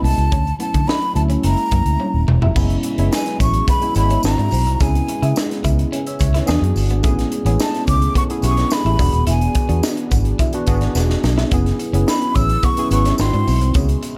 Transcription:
Already playing: G#3 B3 C#4 E4 F#4
0.03 C2 B3 A5, open hi-hat
0.18 C#2, closed hi-hat
0.32 D2 C#4, kick, closed hi-hat
0.47 closed hi-hat
0.59 F#3 A3 B3 C#4 E4 A5, closed hi-hat
0.74 D3, muted clean electric guitar stroke, kick, closed hi-hat
0.88 C#4 B5, snare
1.02 closed hi-hat
1.15 D2 F#3 A3 C#4 E4 A5, muted clean electric guitar stroke, closed hi-hat
1.29 F#3 A3 C#4 E4, closed hi-hat
1.43 F#1 G#3 A#3 C#4 E4 A#5, closed hi-hat
1.57 closed hi-hat
1.71 F#2 A#3, kick, closed hi-hat
1.86 D2, closed hi-hat
2.00 C#4, high tom
2.14 D#1
2.28 E1, muted clean electric guitar stroke, mid tom
2.42 F1 E4, floor tom
2.55 F#1 F#3 G#3 B3 C#4 E4 G#4 B4, kick, crash, tambourine
2.70 closed hi-hat
2.83 muted clean electric guitar stroke, closed hi-hat
2.98 F#1 G#3 B3 C#4 E4, closed hi-hat
3.12 G#5, snare, tambourine
3.26 snare, closed hi-hat
3.40 A1 C#4 C#6, kick, closed hi-hat, tambourine
3.54 closed hi-hat
3.68 B3 B5, kick, closed hi-hat, tambourine
3.81 G#3 B3 C#4 E4, closed hi-hat
3.95 G#1 G#3 B3 C#4 E4 B5, muted clean electric guitar stroke, closed hi-hat, tambourine
4.10 C#4, closed hi-hat
4.23 G#1 G#3 C4 D#4 E4 F#4 A#5, muted clean electric guitar stroke, snare, tambourine
4.38 G#2 D4, closed hi-hat
4.51 B1 C4, open hi-hat, tambourine
4.66 C2, closed hi-hat
4.80 C#2 C#3 G#3 B3 C#4 E4 G#4 G#5, kick, closed hi-hat, tambourine
4.95 closed hi-hat
5.08 muted clean electric guitar stroke, closed hi-hat
5.22 C#3 B3 C#4 E4 G#4, closed hi-hat
5.36 snare, tambourine
5.51 snare, closed hi-hat
5.64 C#2 E4, kick, closed hi-hat, tambourine
5.79 closed hi-hat
5.92 C#4 E5 G#5, closed hi-hat
6.07 C#5 E5, closed hi-hat
6.19 C#2 C#5, muted clean electric guitar stroke, kick, closed hi-hat, tambourine
6.34 E4 G#4 B4, snare, closed hi-hat
6.46 E2 E3 B3 D4 F#4 G#4, snare, tambourine
6.62 F#2, closed hi-hat
6.76 G1, muted clean electric guitar stroke, open hi-hat, tambourine
6.90 G#1 B3, closed hi-hat
7.03 A1 G#3 A3 B3 C#4 E4 G#4, kick, closed hi-hat, tambourine
7.19 snare, closed hi-hat
7.32 muted clean electric guitar stroke, closed hi-hat
7.45 A1 B3 C#4 E4 G#4, closed hi-hat
7.60 A5, snare, tambourine
7.74 snare, closed hi-hat
7.87 C#2 C#4 D6, kick, closed hi-hat, tambourine
8.02 closed hi-hat
8.15 B3 C#6, kick, closed hi-hat
8.29 B3 C#4 E4 G#4, closed hi-hat
8.42 B1 B3 C#4 E4 G4 C#6, muted clean electric guitar stroke, closed hi-hat, tambourine
8.51 G#4
8.57 C#4, snare, closed hi-hat
8.70 B5, muted clean electric guitar stroke, snare, tambourine
8.85 A1 E4, closed hi-hat
8.99 E1 E3 B3 D4 F#4 G#4, kick, open hi-hat, tambourine
9.13 D#1, closed hi-hat
9.27 E1 E4 G#5, closed hi-hat, tambourine
9.41 closed hi-hat
9.55 muted clean electric guitar stroke, kick, closed hi-hat, tambourine
9.69 E2 B3 D4 F#4 G#4, closed hi-hat
9.83 snare, tambourine
9.97 closed hi-hat
10.11 G#1 B3, kick, closed hi-hat, tambourine
10.25 closed hi-hat
10.39 E4, kick, closed hi-hat, tambourine
10.53 B3 D4 F#4 B4, closed hi-hat
10.67 G#1 B3 D4 F#4 G#4, muted clean electric guitar stroke, kick, closed hi-hat, tambourine
10.81 D4, snare, closed hi-hat
10.95 E1 B3, snare, tambourine
11.10 snare
11.24 B1, muted clean electric guitar stroke, snare, tambourine
11.38 E4, snare
11.51 F#1 F#3 B3 C#4 E4 G#4 B4, kick, closed hi-hat, tambourine
11.66 snare, closed hi-hat
11.79 muted clean electric guitar stroke, closed hi-hat, tambourine
11.93 F#1 B3 C#4 E4 G#4, closed hi-hat
12.08 B5, snare, tambourine
12.22 closed hi-hat
12.35 A1 C#4 E6, kick, closed hi-hat, tambourine
12.49 closed hi-hat
12.63 B3 C#6, kick, closed hi-hat
12.77 B3 C#4 E4 G#4, closed hi-hat
12.91 G#1 B3 C#4 E4 B4 C#6, muted clean electric guitar stroke, closed hi-hat, tambourine
13.05 C#4, snare, closed hi-hat
13.18 G#1 G#3 C4 D#4 E4 F#4 C6, muted clean electric guitar stroke, snare, tambourine
13.33 G#2 D4, closed hi-hat
13.47 B1 C4, open hi-hat, tambourine
13.61 C2, closed hi-hat
13.74 C#2 C#3 G#3 B3 C#4 E4 G#4, kick, closed hi-hat, tambourine
13.89 closed hi-hat
14.03 muted clean electric guitar stroke, closed hi-hat, tambourine

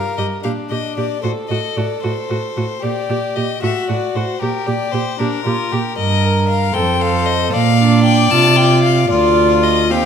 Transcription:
Already playing: A#4 F5
0.18 G2 G4 D#5
0.44 A#2 D4 G4 F5
0.70 A#2 G4 D#5
0.97 A#2 G4 D5
1.23 A2 F#4 A4 C5
1.49 A2 F#4 D#5
1.77 A2 F#4 D5
2.04 A2 F#4 C5
2.30 A2 F#4
2.57 A2 F#4
2.82 A#2 G4 D5
3.09 A#2 G4
3.36 A#2 G4 D#5
3.62 A2 F#4 E5
3.89 A2 F#4 D5
4.15 A2 F#4 C5
4.41 A#2 G4 A#4
4.67 A#2 G4 D5
4.92 A#2 G4 C5
5.19 A#2 D4 G4 A#4
5.45 A#2 F4 G4
5.72 A#2 G4
5.97 G2 A#4 D#5
6.24 A#4
6.49 F5
6.74 F2 A4 C5 G5
7.01 A4 F5
7.26 D#5
7.52 A#2 D5 F5
7.79 D4
8.04 G5
8.31 C3 F4 A5
8.56 F4 G5
8.83 F5
9.09 D2 F4 D5
9.63 D#5
9.90 D#2 C4 G4 F5

